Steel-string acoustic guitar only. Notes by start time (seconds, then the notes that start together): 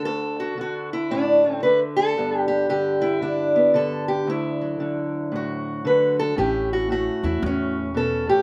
Already playing: D3
0.05 D2 A4
0.40 F#4
0.58 D3 F#4
0.93 E4
1.11 A2 D4
1.45 A3
1.63 D3 B4
1.97 A4
2.17 G2 D3 B3 D4
2.48 G4
2.69 D3 G4
3.01 E4
3.21 D3 D4
3.56 B3
3.74 D3 A4
4.08 G4
4.27 D2 E4
4.61 F#3
4.80 D3
5.32 A2 F#4
5.85 D3 B4
6.19 A4
6.37 A2 A3 C#4 E4 G4
6.73 F#4
6.90 A3 F#4
7.24 E4
7.42 A2 C#4
7.94 B2 A4
8.27 A2 G4